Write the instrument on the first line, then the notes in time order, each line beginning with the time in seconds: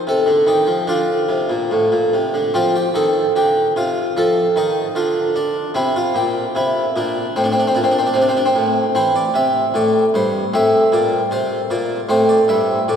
harpsichord
Already playing: D#4
0.07 C3 A4
0.26 D3
0.47 D#3 G4
0.67 F3
0.87 D3 D4 F4
1.29 C3
1.50 A#2
1.71 A2
1.92 A#2
2.13 C3
2.34 D3
2.54 F3 C4 F4
2.76 G4
2.94 D#3 A4
3.36 D3 G4
3.76 C3 F4
4.17 F3 A4
4.56 D#3 D#4
4.95 D3 F4
5.36 D4
5.74 C3 C4 E4
5.96 F4
6.15 A#2 G4
6.55 C3 E4
6.96 A#2 D4
7.36 A2 C4
7.44 D4
7.52 C4
7.60 D4
7.67 C4
7.75 A#2 D4
7.84 C4
7.91 D4
7.98 C4
8.07 D4
8.14 C3 C4
8.22 D4
8.29 C4
8.37 D4
8.46 C4
8.55 A2
8.95 E3 C4 C5
9.16 D5
9.34 C3 E5
9.74 A2 D5
10.14 G2 C5
10.54 A2 C4 E5
10.92 A#2 D5
11.31 C3 C5
11.70 A#2 D5
12.09 A2 C4 C5
12.29 D5
12.48 G2 E5
12.88 A2 D5